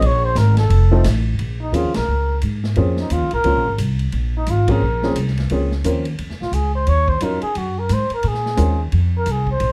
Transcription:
0.01 A#1, ride
0.06 C#5
0.25 C5
0.35 G#1 A#4, snare, hi-hat pedal, ride
0.57 A4, snare, ride
0.70 F1, ride
0.91 F3 A3 C4 D#4 A4
1.04 A1, snare, hi-hat pedal, ride
1.39 A#1, ride
1.61 D#4
1.72 D#2 F3 A#3 C4 C#4 F4 G#4, hi-hat pedal, ride
1.84 C#2
1.94 A#1 A#4, snare, ride
2.08 C#2
2.42 G#2, hi-hat pedal, ride
2.64 snare
2.76 F2 F3 A#3 C4 C#4 G#4, ride
2.97 D#4, snare
3.10 D#2 F4, hi-hat pedal, ride
3.21 C#2
3.31 A#1 A#4, ride
3.44 C#2 F3 A#3 C4 C#4 F4, ride
3.56 A#1
3.67 G#1
3.78 C2, hi-hat pedal, ride
3.99 ride
4.12 A#1, ride
4.37 D#4
4.46 G#1, hi-hat pedal, ride
4.51 F4
4.68 F3 A#3 C4 C#4 G#4 A#4, kick, ride
4.81 A#1
5.03 F3 A#3 C4 C#4 G#4, snare
5.16 C2, hi-hat pedal, ride
5.27 snare
5.37 snare, ride
5.50 C#2 F3 A#3 C4 C#4 G#4, ride
5.71 snare
5.84 D#2 F3 A#3 C4 C#4 A#4, hi-hat pedal, ride
6.05 ride
6.18 F2, ride
6.30 C#2, snare
6.41 A#1 F4, snare
6.51 C#2 G#4, hi-hat pedal, ride
6.75 C5
6.87 D#2 C#5, ride
7.08 C5, kick
7.20 F2 F#3 C#4 D#4 F4 A#4, hi-hat pedal, ride
7.42 G#4, muted upright bass stroke, ride
7.55 F#2 F#4, ride
7.79 A#4
7.89 G#2, hi-hat pedal, ride
7.94 C5
8.10 A#4, muted upright bass stroke, ride
8.23 A#2, ride
8.28 G#4
8.34 snare
8.46 snare
8.57 D#2 G#3 C4 C#4 F4 A#4, hi-hat pedal, ride
8.92 F2, ride
9.18 A#4
9.26 C2, hi-hat pedal, ride
9.31 G#4
9.47 kick
9.52 C5
9.60 A#1, ride

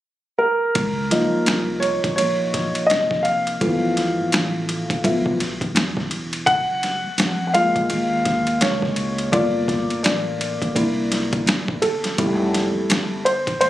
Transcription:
0.38 A#4
0.75 C#2, kick, ride
1.11 F3 A#3 D#4, snare, ride
1.33 muted upright bass stroke
1.46 C2, snare, hi-hat pedal, ride
1.80 C#5, ride
2.04 muted upright bass stroke, kick, ride
2.16 A#1 C#5, ride
2.54 kick, snare, ride
2.75 ride
2.87 F1 D#5, hi-hat pedal, ride
2.91 snare
3.11 kick, snare
3.23 F5, ride
3.47 ride
3.61 G1 E3 F3 A3 B3, kick, ride
3.97 snare, ride
4.18 muted upright bass stroke
4.32 A1, snare, hi-hat pedal, ride
4.69 ride
4.90 muted upright bass stroke, kick, ride
5.04 B1 F3 A3 B3 E5, kick, ride
5.26 kick
5.40 snare, ride
5.61 kick, ride
5.75 E1, snare, hi-hat pedal, ride
5.97 kick, snare
6.11 ride
6.33 ride
6.46 F#1 F#5, kick, ride
6.83 snare, ride
7.04 muted upright bass stroke
7.18 F2, snare, hi-hat pedal, ride
7.47 F#5
7.53 G#3 A#3 F4 F5, ride
7.76 muted upright bass stroke, kick, ride
7.90 D#2, ride
8.25 kick, snare, ride
8.47 ride
8.61 C#2 C#5, snare, hi-hat pedal, ride
8.82 kick, snare
8.96 ride
9.18 ride
9.32 G1 A3 A#3 F4 D5, kick, ride
9.68 kick, snare, ride
9.90 muted upright bass stroke, ride
10.03 A1 D5, snare, hi-hat pedal, ride
10.41 ride
10.62 muted upright bass stroke, kick, ride
10.75 C2 A#3 D4 E4, kick, ride
11.12 snare, ride
11.33 kick, ride
11.46 G1, snare, hi-hat pedal, ride
11.68 kick
11.82 A4, ride
12.04 snare, ride
12.18 F1 G3 A3 E4, kick, ride
12.54 snare, ride
12.75 muted upright bass stroke
12.90 G1, snare, hi-hat pedal, ride
13.25 C5, ride
13.47 muted upright bass stroke, kick, ride
13.61 A1 C5, ride

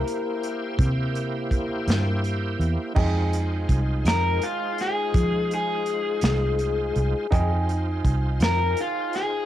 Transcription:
Already playing: A#3 E4 G4 A#4 C5
0.07 closed hi-hat
0.43 closed hi-hat
0.79 C3, kick, closed hi-hat
1.15 closed hi-hat
1.51 kick, closed hi-hat
1.88 G2, snare, closed hi-hat
2.24 closed hi-hat
2.59 E2, closed hi-hat
2.94 F2 G#3 D#4 F4 G#4 C5 G5, kick, crash
3.33 closed hi-hat
3.69 C2, kick, closed hi-hat
4.05 F2 A#4, snare, closed hi-hat
4.42 F4, closed hi-hat
4.78 G#4, snare, closed hi-hat
5.14 F3, kick, closed hi-hat
5.51 G#4, closed hi-hat
5.86 closed hi-hat
6.21 C2, snare, closed hi-hat
6.59 closed hi-hat
6.96 C2, closed hi-hat
7.31 F2 D#4 F4 G#4 C5 G5, kick, closed hi-hat
7.69 closed hi-hat
8.05 C2, kick, closed hi-hat
8.40 F2, snare, closed hi-hat
8.44 A#4
8.77 F4, closed hi-hat
9.13 G#4, snare, closed hi-hat

